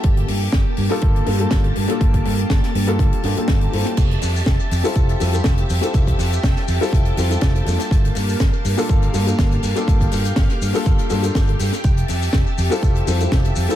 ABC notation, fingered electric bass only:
X:1
M:4/4
L:1/8
Q:"Swing 16ths" 1/4=122
K:Gdor
V:1 name="Fingered electric bass" clef=bass
G,,, G,, G,,, G,, G,,, G,, G,,, G,, | G,,, G,, G,,, G,, G,,, G,, G,,, G,, | F,,, F,, F,,, F,, F,,, F,, F,,, F,, | F,,, F,, F,,, F,, F,,, F,, F,,, F,, |
G,,, G,, G,,, G,, G,,, G,, G,,, G,, | G,,, G,, G,,, G,, G,,, G,, G,,, G,, | F,,, F,, F,,, F,, F,,, F,, F,,, F,, |]